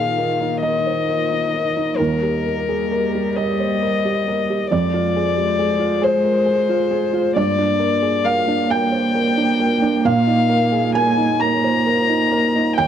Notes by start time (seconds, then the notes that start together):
Already playing: A#2 D#3 A#3 D#4 F4 G#4 A#4 D#5 F5
0.18 A#4
0.41 D#4
0.62 A#4 D#5
0.86 C5
1.08 A#4
1.31 D#4
1.54 A#4
1.77 D#4
1.97 D#2 G3 A#3 G4 A#4
2.23 G4
2.46 A#4
2.69 G#4
2.92 A#4
3.15 G4
3.35 A#4 D#5
3.60 C5
3.83 A#4
4.05 G4
4.28 A#4
4.50 G4
4.70 F2 G#3 F4 C5 D5
4.94 F4
5.16 G#4
5.37 G4
5.59 G#4
5.79 F4
6.02 G#4 C5
6.24 A#4
6.46 G#4
6.69 F4
6.91 G#4
7.13 F4
7.36 G2 A#3 D5
7.58 D4
7.79 A#4
8.02 G#4
8.25 A#4 F5
8.48 D4
8.70 A#4 G5
8.92 C5
9.15 A#4
9.37 D4
9.60 A#4
9.82 D4
10.05 A#2 F4 D#5 F5
10.27 D#4
10.50 A#4
10.72 G#4
10.95 A#4 G#5
11.17 D#4
11.40 A#4 A#5
11.64 C5
11.86 A#4
12.09 D#4
12.32 A#4
12.56 D#4
12.76 D#2 A#3 G4 G5